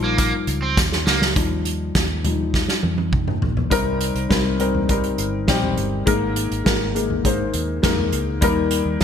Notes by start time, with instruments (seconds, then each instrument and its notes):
Already playing: fingered electric bass A#1, upright piano F3 G3 D#4 D#5
0.04 overdriven electric guitar A#3
0.18 overdriven electric guitar A#3, kick, closed hi-hat, tambourine
0.47 fingered electric bass C#2, closed hi-hat, tambourine
0.62 overdriven electric guitar C4
0.77 fingered electric bass D#2, kick, snare, tambourine
0.92 snare
1.07 fingered electric bass C#2, overdriven electric guitar A#3, snare, tambourine
1.22 snare
1.36 fingered electric bass D#2, upright piano F3 G3 D#4, kick, closed hi-hat
1.65 closed hi-hat
1.95 fingered electric bass D#2, kick, snare, closed hi-hat
2.24 upright piano F3 G3 D#4, closed hi-hat, floor tom
2.54 kick, snare
2.68 snare
2.83 fingered electric bass F2, high tom
2.98 high tom
3.13 kick, mid tom
3.28 mid tom
3.42 fingered electric bass A#1, floor tom
3.57 floor tom
3.70 fingered electric bass C2, upright piano C3 G3 C4 D#4 A#4, kick, closed hi-hat
4.01 closed hi-hat
4.15 fingered electric bass C2, closed hi-hat
4.29 fingered electric bass C2, upright piano G3 C4 D#4 A#4, kick, snare, closed hi-hat
4.59 upright piano G3 C4 D#4 A#4, closed hi-hat
4.75 floor tom
4.88 upright piano G3 C4 D#4 A#4, kick, closed hi-hat
5.04 closed hi-hat
5.18 fingered electric bass G1, closed hi-hat
5.48 fingered electric bass A#1, upright piano G3 C4 D#4 G4, kick, snare, closed hi-hat
5.63 floor tom
5.77 fingered electric bass G1, closed hi-hat
6.06 fingered electric bass G#1, upright piano G#2 G#3 A#3 D#4 A#4, kick, closed hi-hat
6.36 closed hi-hat
6.51 fingered electric bass G#1, closed hi-hat
6.64 fingered electric bass G#1, upright piano G#3 A#3 D#4 A#4, kick, snare, closed hi-hat
6.94 upright piano G#3 A#3 D#4 A#4, closed hi-hat
7.10 floor tom
7.24 upright piano G#3 A#3 D#4 C5, kick, closed hi-hat
7.54 fingered electric bass D#2, closed hi-hat
7.82 fingered electric bass F2, upright piano G#3 A#3 D#4 A#4, kick, snare, closed hi-hat
7.98 floor tom
8.12 fingered electric bass C#2, closed hi-hat
8.41 fingered electric bass D#2, upright piano D#3 G3 A#3 D#4 A#4, kick, closed hi-hat
8.71 closed hi-hat
8.85 fingered electric bass D#2
9.00 upright piano G3 A#3 D#4, snare, closed hi-hat